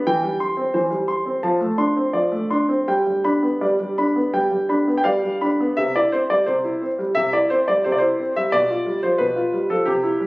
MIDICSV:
0, 0, Header, 1, 2, 480
1, 0, Start_track
1, 0, Key_signature, 0, "major"
1, 0, Tempo, 688863
1, 49, Time_signature, 4, 2, 24, 8
1, 1489, Tempo, 727273
1, 3889, Tempo, 692841
1, 5329, Tempo, 673401
1, 7051, End_track
2, 0, Start_track
2, 0, Title_t, "Grand piano"
2, 0, Program_c, 0, 0
2, 46, Note_on_c, 0, 52, 53
2, 47, Note_on_c, 0, 79, 51
2, 162, Note_off_c, 0, 52, 0
2, 162, Note_on_c, 0, 55, 38
2, 280, Note_on_c, 0, 84, 50
2, 288, Note_off_c, 0, 55, 0
2, 295, Note_off_c, 0, 79, 0
2, 397, Note_on_c, 0, 60, 43
2, 515, Note_on_c, 0, 72, 46
2, 516, Note_on_c, 0, 52, 40
2, 523, Note_off_c, 0, 60, 0
2, 529, Note_off_c, 0, 84, 0
2, 630, Note_on_c, 0, 55, 38
2, 632, Note_off_c, 0, 52, 0
2, 752, Note_on_c, 0, 84, 40
2, 758, Note_off_c, 0, 55, 0
2, 766, Note_off_c, 0, 72, 0
2, 876, Note_on_c, 0, 60, 38
2, 994, Note_off_c, 0, 84, 0
2, 996, Note_off_c, 0, 60, 0
2, 997, Note_on_c, 0, 81, 49
2, 999, Note_on_c, 0, 53, 51
2, 1115, Note_off_c, 0, 53, 0
2, 1120, Note_on_c, 0, 57, 37
2, 1239, Note_on_c, 0, 62, 38
2, 1241, Note_on_c, 0, 84, 46
2, 1248, Note_off_c, 0, 57, 0
2, 1253, Note_off_c, 0, 81, 0
2, 1370, Note_off_c, 0, 62, 0
2, 1370, Note_on_c, 0, 60, 36
2, 1487, Note_on_c, 0, 53, 39
2, 1487, Note_on_c, 0, 74, 42
2, 1498, Note_off_c, 0, 60, 0
2, 1502, Note_off_c, 0, 84, 0
2, 1605, Note_off_c, 0, 53, 0
2, 1608, Note_on_c, 0, 57, 36
2, 1732, Note_on_c, 0, 84, 42
2, 1733, Note_on_c, 0, 62, 39
2, 1735, Note_off_c, 0, 57, 0
2, 1740, Note_off_c, 0, 74, 0
2, 1852, Note_on_c, 0, 60, 40
2, 1858, Note_off_c, 0, 62, 0
2, 1973, Note_off_c, 0, 60, 0
2, 1973, Note_off_c, 0, 84, 0
2, 1978, Note_on_c, 0, 55, 44
2, 1980, Note_on_c, 0, 79, 42
2, 2093, Note_off_c, 0, 55, 0
2, 2103, Note_on_c, 0, 55, 29
2, 2220, Note_on_c, 0, 62, 37
2, 2220, Note_on_c, 0, 83, 44
2, 2225, Note_off_c, 0, 55, 0
2, 2231, Note_off_c, 0, 79, 0
2, 2341, Note_on_c, 0, 59, 33
2, 2344, Note_off_c, 0, 62, 0
2, 2463, Note_on_c, 0, 74, 35
2, 2464, Note_off_c, 0, 59, 0
2, 2464, Note_on_c, 0, 55, 40
2, 2470, Note_off_c, 0, 83, 0
2, 2575, Note_off_c, 0, 55, 0
2, 2585, Note_on_c, 0, 55, 38
2, 2706, Note_off_c, 0, 55, 0
2, 2706, Note_on_c, 0, 83, 42
2, 2708, Note_on_c, 0, 62, 35
2, 2711, Note_off_c, 0, 74, 0
2, 2824, Note_on_c, 0, 59, 37
2, 2827, Note_off_c, 0, 62, 0
2, 2940, Note_on_c, 0, 55, 41
2, 2940, Note_on_c, 0, 79, 46
2, 2944, Note_off_c, 0, 59, 0
2, 2951, Note_off_c, 0, 83, 0
2, 3047, Note_off_c, 0, 55, 0
2, 3056, Note_on_c, 0, 55, 31
2, 3175, Note_on_c, 0, 62, 37
2, 3177, Note_on_c, 0, 83, 38
2, 3179, Note_off_c, 0, 55, 0
2, 3186, Note_off_c, 0, 79, 0
2, 3297, Note_off_c, 0, 62, 0
2, 3298, Note_on_c, 0, 59, 35
2, 3362, Note_on_c, 0, 79, 47
2, 3403, Note_on_c, 0, 77, 59
2, 3410, Note_off_c, 0, 79, 0
2, 3410, Note_on_c, 0, 55, 40
2, 3411, Note_on_c, 0, 74, 38
2, 3419, Note_off_c, 0, 59, 0
2, 3423, Note_off_c, 0, 83, 0
2, 3524, Note_off_c, 0, 55, 0
2, 3533, Note_on_c, 0, 55, 31
2, 3651, Note_on_c, 0, 83, 39
2, 3653, Note_on_c, 0, 62, 39
2, 3659, Note_off_c, 0, 55, 0
2, 3664, Note_off_c, 0, 74, 0
2, 3694, Note_off_c, 0, 77, 0
2, 3778, Note_off_c, 0, 62, 0
2, 3778, Note_on_c, 0, 59, 40
2, 3885, Note_on_c, 0, 76, 67
2, 3890, Note_off_c, 0, 83, 0
2, 3891, Note_on_c, 0, 48, 39
2, 3893, Note_off_c, 0, 59, 0
2, 4009, Note_off_c, 0, 48, 0
2, 4010, Note_off_c, 0, 76, 0
2, 4015, Note_on_c, 0, 74, 53
2, 4016, Note_on_c, 0, 64, 27
2, 4131, Note_on_c, 0, 72, 60
2, 4135, Note_off_c, 0, 74, 0
2, 4137, Note_on_c, 0, 60, 34
2, 4141, Note_off_c, 0, 64, 0
2, 4252, Note_off_c, 0, 72, 0
2, 4253, Note_on_c, 0, 74, 57
2, 4255, Note_on_c, 0, 55, 31
2, 4261, Note_off_c, 0, 60, 0
2, 4366, Note_on_c, 0, 72, 55
2, 4373, Note_off_c, 0, 74, 0
2, 4374, Note_on_c, 0, 48, 34
2, 4380, Note_off_c, 0, 55, 0
2, 4489, Note_off_c, 0, 48, 0
2, 4492, Note_on_c, 0, 64, 35
2, 4611, Note_on_c, 0, 60, 31
2, 4617, Note_off_c, 0, 64, 0
2, 4654, Note_off_c, 0, 72, 0
2, 4730, Note_on_c, 0, 55, 34
2, 4736, Note_off_c, 0, 60, 0
2, 4841, Note_on_c, 0, 76, 74
2, 4847, Note_on_c, 0, 48, 39
2, 4855, Note_off_c, 0, 55, 0
2, 4964, Note_off_c, 0, 48, 0
2, 4965, Note_off_c, 0, 76, 0
2, 4969, Note_on_c, 0, 74, 56
2, 4970, Note_on_c, 0, 64, 34
2, 5086, Note_on_c, 0, 72, 61
2, 5089, Note_off_c, 0, 74, 0
2, 5092, Note_on_c, 0, 60, 35
2, 5095, Note_off_c, 0, 64, 0
2, 5207, Note_off_c, 0, 72, 0
2, 5208, Note_on_c, 0, 74, 55
2, 5211, Note_on_c, 0, 55, 29
2, 5217, Note_off_c, 0, 60, 0
2, 5323, Note_on_c, 0, 72, 55
2, 5329, Note_off_c, 0, 74, 0
2, 5332, Note_on_c, 0, 48, 39
2, 5337, Note_off_c, 0, 55, 0
2, 5376, Note_off_c, 0, 72, 0
2, 5378, Note_on_c, 0, 74, 50
2, 5422, Note_on_c, 0, 72, 61
2, 5429, Note_off_c, 0, 74, 0
2, 5445, Note_on_c, 0, 64, 33
2, 5450, Note_off_c, 0, 48, 0
2, 5574, Note_on_c, 0, 60, 33
2, 5577, Note_off_c, 0, 64, 0
2, 5664, Note_off_c, 0, 72, 0
2, 5694, Note_on_c, 0, 76, 67
2, 5695, Note_on_c, 0, 55, 35
2, 5701, Note_off_c, 0, 60, 0
2, 5807, Note_on_c, 0, 74, 66
2, 5812, Note_on_c, 0, 47, 45
2, 5814, Note_off_c, 0, 55, 0
2, 5814, Note_off_c, 0, 76, 0
2, 5928, Note_off_c, 0, 47, 0
2, 5933, Note_on_c, 0, 65, 31
2, 6049, Note_on_c, 0, 55, 34
2, 6057, Note_off_c, 0, 65, 0
2, 6138, Note_off_c, 0, 74, 0
2, 6168, Note_on_c, 0, 72, 58
2, 6170, Note_on_c, 0, 53, 33
2, 6175, Note_off_c, 0, 55, 0
2, 6278, Note_on_c, 0, 71, 57
2, 6287, Note_on_c, 0, 47, 36
2, 6288, Note_off_c, 0, 72, 0
2, 6296, Note_off_c, 0, 53, 0
2, 6403, Note_on_c, 0, 65, 36
2, 6405, Note_off_c, 0, 47, 0
2, 6525, Note_on_c, 0, 55, 38
2, 6533, Note_off_c, 0, 65, 0
2, 6645, Note_off_c, 0, 71, 0
2, 6646, Note_on_c, 0, 53, 36
2, 6646, Note_on_c, 0, 69, 59
2, 6654, Note_off_c, 0, 55, 0
2, 6757, Note_on_c, 0, 67, 61
2, 6764, Note_on_c, 0, 48, 50
2, 6768, Note_off_c, 0, 53, 0
2, 6768, Note_off_c, 0, 69, 0
2, 6883, Note_off_c, 0, 48, 0
2, 6883, Note_on_c, 0, 64, 40
2, 7007, Note_on_c, 0, 55, 40
2, 7012, Note_off_c, 0, 64, 0
2, 7051, Note_off_c, 0, 55, 0
2, 7051, Note_off_c, 0, 67, 0
2, 7051, End_track
0, 0, End_of_file